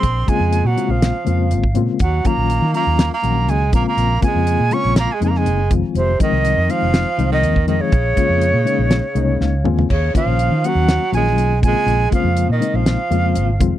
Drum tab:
CC |----------------|----------------|----------------|----------------|
HH |x-x-x-x-x-x-x-x-|x-x-x-x-x-x-x-x-|x-x-x-x-x-x-x-x-|x-x-x-x-x-x-x-x-|
SD |--------o-------|--------o-------|--------o--o----|--------o-------|
T2 |----------------|----------------|----------------|----------------|
FT |----------------|----------------|----------------|----------------|
BD |o-o----------o--|o-o-----------o-|--o-----------o-|--o----------o--|

CC |----------------|x---------------|----------------|
HH |x-x-x-x-x-x-----|--x-x-x-x-x-x-x-|x-x-x-x-x-x-x-x-|
SD |--------o---o---|--------o--o----|--------o-------|
T2 |--------------o-|----------------|----------------|
FT |---------------o|----------------|----------------|
BD |o-o-------------|o-o-----------o-|--o-----------o-|